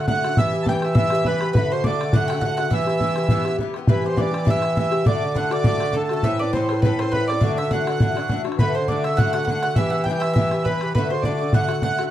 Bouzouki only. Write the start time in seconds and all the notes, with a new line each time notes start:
0.08 A2 D3 A3 F#4
0.24 D3 A3 F#4
0.37 G2 E3 B3 G4
0.53 E3 B3 G4
0.66 G2 E3 B3 G4
0.82 E3 B3 G4
0.96 G2 E3 B3 G4
1.12 E3 B3 G4
1.26 G2 E3 B3 G4
1.41 E3 B3 G4
1.56 A2 D3 A3 F#4
1.72 D3 A3 F#4
1.84 A2 D3 A3 F#4
2.00 D3 A3 F#4
2.13 A2 D3 A3 F#4
2.31 D3 A3 F#4
2.43 A2 D3 A3 F#4
2.58 D3 A3 F#4
2.71 G2 E3 B3 G4
2.86 E3 B3 G4
3.01 G2 E3 B3 G4
3.17 E3 B3 G4
3.30 G2 E3 B3 G4
3.45 B3 G4
3.49 E3
3.59 G2 E3 B3
3.63 G4
3.76 E3 B3 G4
3.88 G2 E3 B3 G4
4.04 E3 B3 G4
4.16 G2 E3 B3 G4
4.31 E3 B3 G4
4.45 G2 E3 B3 G4
4.62 E3 B3 G4
4.75 G2 E3 B3 G4
4.91 E3 B3 G4
5.05 A2 D3 A3 F#4
5.21 D3 A3 F#4
5.34 A2 D3 A3 F#4
5.51 A3 F#4
5.55 D3
5.64 A2 D3 A3 F#4
5.80 D3 A3 F#4
5.93 A2 D3 A3 F#4
6.11 D3 A3 F#4
6.23 E3 C4 A4 B4
6.39 C4 A4 B4
6.53 E3 C4 A4 B4
6.69 C4 A4 B4
6.83 E3 C4 A4 B4
7.00 C4 A4 B4
7.13 E3 C4 A4
7.17 B4
7.29 C4 A4 B4
7.41 A2 E3 D4 F#4
7.59 E3 D4 F#4
7.71 A2 E3 D4 F#4
7.87 E3 D4 F#4
8.00 A2 E3 D4 F#4
8.15 E3 D4 F#4
8.30 A2 E3 D4 F#4
8.44 E3 D4 F#4
8.59 A2 D3 A3 F#4
8.75 A3 F#4
8.80 D3
8.88 A2 D3 A3 F#4
9.04 A3 F#4
9.08 D3
9.19 A2 D3 A3 F#4
9.34 A3 F#4
9.39 D3
9.47 A2 D3 A3 F#4
9.63 D3 A3 F#4
9.78 G2 E3 B3 G4
9.93 E3 B3 G4
10.08 G2 E3 B3 G4
10.23 E3 B3 G4
10.36 G2 E3 B3 G4
10.52 E3 B3 G4
10.66 G2 E3 B3 G4
10.82 E3 B3 G4
10.96 A2 D3 A3 F#4
11.11 D3 A3 F#4
11.24 A2 D3 A3 F#4
11.39 D3 A3 F#4
11.54 A2 D3 A3 F#4
11.68 D3 A3 F#4
11.82 A2 D3 A3 F#4
11.99 D3 A3 F#4